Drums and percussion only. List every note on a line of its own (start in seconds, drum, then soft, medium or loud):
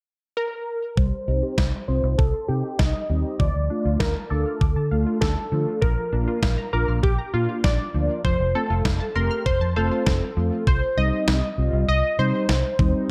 0.97 kick loud
1.58 kick loud
1.58 snare loud
2.19 kick loud
2.79 kick loud
2.79 snare loud
3.40 kick loud
4.00 kick loud
4.00 snare loud
4.61 kick loud
5.22 kick loud
5.22 snare loud
5.82 kick loud
6.43 kick loud
6.43 snare loud
7.04 kick loud
7.64 kick loud
7.64 snare loud
8.25 kick loud
8.85 kick loud
8.85 snare loud
9.46 kick loud
10.06 kick loud
10.06 snare loud
10.67 kick loud
11.28 snare loud
12.49 snare loud
12.79 kick loud